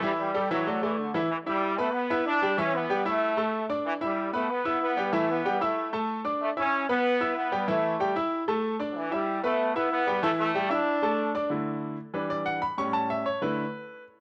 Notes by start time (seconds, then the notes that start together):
0.02 E3 G3 E4 E5
0.19 G3
0.34 G3 G4 A4
0.51 E3 F#3 E4 E5
0.67 A3 A4 D5
0.83 E3 A3 A4 D5
0.98 D3
1.14 E3 E4 E5
1.30 E3
1.46 G3 E4 E5 E6
1.78 A3 B3 B4 B5
1.94 B3
2.10 E4 E5 E6
2.26 D4
2.42 G3 G4 G5
2.58 E3 C#4 E4 E5
2.74 B3
2.90 G3 G4 G5
3.05 A3 E4 E5 E6
3.37 A3 A4 A5
3.69 D4 D5 D6
3.85 E3
4.01 G3 E4 E5 E6
4.33 A3 B3 B4 B5
4.49 B3
4.65 E4 E5 E6
4.81 B3
4.97 G3 G4 G5
5.13 E3 A3 E4 E5
5.30 B3
5.45 G3 G4 G5
5.61 A3 E4 E5 E6
5.93 A3 A4 A5
6.25 D4 D5 D6
6.42 A3
6.57 C#4 E4 E5 E6
6.89 B3 B4 B5
7.21 E4 E5 E6
7.36 B3
7.52 G3 G4 G5
7.68 E3 A3 E4 E5
8.00 G3 G4 G5
8.16 E4 E5 E6
8.48 A3 A4 A5
8.79 D4 D5 D6
8.92 E3 F#3
9.11 G3 E4 E5 E6
9.43 A3 B3 B4 B5
9.75 B3 E4 E5 E6
9.91 B3
10.07 G3 G4 G5
10.22 E3 A3 E4 E5
10.38 A3
10.55 G3 G4 G5
10.70 D4 E4 E5 E6
11.02 A3 A4 A5
11.35 D4 D5 D6
11.50 D3 A3 E4
12.14 E3 G3 D4 B4
12.30 D5
12.46 F#5
12.62 B5
12.78 A2 G3 C#4 C#6
12.93 A5
13.10 E5
13.26 C#5
13.42 D3 A3 E4 B4